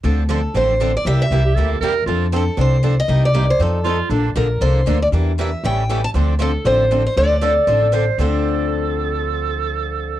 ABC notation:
X:1
M:4/4
L:1/16
Q:"Swing" 1/4=235
K:Dm
V:1 name="Steel-string acoustic guitar"
z4 A4 c6 d2 | e2 e8 z6 | z4 A4 c6 _e2- | _e2 d4 c2 A6 z2 |
z4 B4 c6 d2 | z4 e4 g6 a2 | z4 A4 c6 c2 | d12 z4 |
z16 | z16 |]
V:2 name="Clarinet"
z16 | z6 G2 A4 B4 | F3 z12 z | z12 F4 |
D3 z12 z | z16 | z16 | z4 A6 A2 c4 |
A16- | A16 |]
V:3 name="Steel-string acoustic guitar"
[D,F,CDA]2 z2 [D,F,CDA]2 z2 [D,F,CDA]2 z2 [D,F,CDA]2 z2 | [C,G,B,EG]2 z2 [C,G,B,EG]2 z2 [C,G,B,EG]2 z2 [C,G,B,EG]2 z2 | [F,CDA]2 z2 [F,CDA]2 z2 [F,CDA]2 z2 [F,CDA]2 z2 | [C,G,B,_EG]2 z2 [C,G,B,EG]2 z2 [F,CEA]2 z2 [F,CEA]2 z2 |
[D,F,B,DA]2 z2 [D,F,B,DA]2 z2 [D,F,B,DA]2 z2 [D,F,B,DA]2 z2 | [E,B,DG]2 z2 [E,B,DG]2 z2 [^C,E,A,^CG]2 z2 [C,E,A,CG]2 z2 | [D,F,CDA]2 z2 [D,F,CDA]2 z2 [D,F,CDA]2 z2 [D,F,CDA]2 z2 | [D,F,CDA]2 z2 [D,F,CDA]2 z2 [D,F,CDA]2 z2 [D,F,CDA]2 z2 |
[D,F,CDA]16- | [D,F,CDA]16 |]
V:4 name="Steel-string acoustic guitar"
[D,F,CDA]2 z2 [D,F,CDA]2 z2 [D,F,CDA]2 z2 [D,F,CDA]2 z2 | [C,G,B,EG]2 z2 [C,G,B,EG]2 z2 [C,G,B,EG]2 z2 [C,G,B,EG]2 z2 | [F,CDA]2 z2 [F,CDA]2 z2 [F,CDA]2 z2 [F,CDA]2 z2 | [C,G,B,_EG]2 z2 [C,G,B,EG]2 z2 [F,CEA]2 z2 [F,CEA]2 z2 |
[D,F,B,DA]2 z2 [D,F,B,DA]2 z2 [D,F,B,DA]2 z2 [D,F,B,DA]2 z2 | [E,G,DEB]2 z2 [E,G,DEB]2 z2 [E,G,^CEA]2 z2 [E,G,CEA]2 z2 | [D,F,CDA]2 z2 [D,F,CDA]2 z2 [D,F,CDA]2 z2 [D,F,CDA]2 z2 | [D,F,CDA]2 z2 [D,F,CDA]2 z2 [D,F,CDA]2 z2 [D,F,CDA]2 z2 |
[D,F,CDA]16- | [D,F,CDA]16 |]
V:5 name="Upright bass" clef=bass
D,,8 A,,,8 | C,,4 C,,4 D,,4 E,,4 | F,,8 C,,8 | C,,8 F,,8 |
B,,,4 B,,,4 C,,4 D,,4 | E,,8 A,,,8 | D,,8 A,,,8 | D,,8 A,,,8 |
D,,16- | D,,16 |]